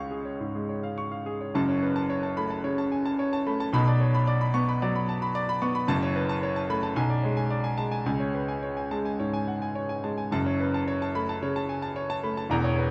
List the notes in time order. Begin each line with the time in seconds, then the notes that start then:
Already playing: C#2 G#3 C#5 F5 C#6
0.11 G#4
0.25 C#5
0.40 G#2
0.55 G#3
0.69 C#5
0.83 F5
0.98 C#6
1.11 F5
1.26 G#4
1.41 C#5
1.54 F#1 F#2 A5
1.68 C#5
1.83 B4
1.96 A5
2.10 C#5
2.23 A5
2.37 A3 B5
2.50 A5
2.64 C#3 C#5
2.78 A5
2.92 G#5
3.05 A5
3.19 C#5
3.33 A5
3.46 A3 B5
3.60 A5
3.73 B1 B2 B5
3.88 D5
4.01 C#5
4.14 B5
4.27 D5
4.41 B5
4.54 B3 C#6
4.69 B5
4.82 F#3 D5
4.95 B5
5.09 A5
5.22 B5
5.35 D5
5.49 B5
5.62 B3 C#6
5.75 B5
5.87 F#1 F#2 A5
6.03 C#5
6.16 B4
6.29 A5
6.43 C#5
6.56 A5
6.70 A3 B5
6.83 A5
6.96 B1 G#5
7.10 D5
7.23 G#3 C#5
7.37 G#5
7.51 D5
7.64 G#5
7.77 G#3 A5
7.91 G#5
8.06 C#2 G#5
8.20 C#5
8.35 B4
8.48 G#5
8.63 C#5
8.77 G#5
8.91 G#3 A5
9.05 G#5
9.20 G#2 C#5
9.33 G#5
9.48 F#5
9.62 G#5
9.75 C#5
9.89 G#5
10.04 G#3 A5
10.18 G#5
10.31 F#1 F#2 A5
10.46 C#5
10.60 B4
10.74 A5
10.88 C#5
11.02 A5
11.15 A3 B5
11.29 A5
11.42 C#3 C#5
11.56 A5
11.69 G#5
11.82 A5
11.96 C#5
12.10 A5
12.23 A3 B5
12.37 A5
12.50 E1 E2 A#5
12.64 C#5
12.78 B4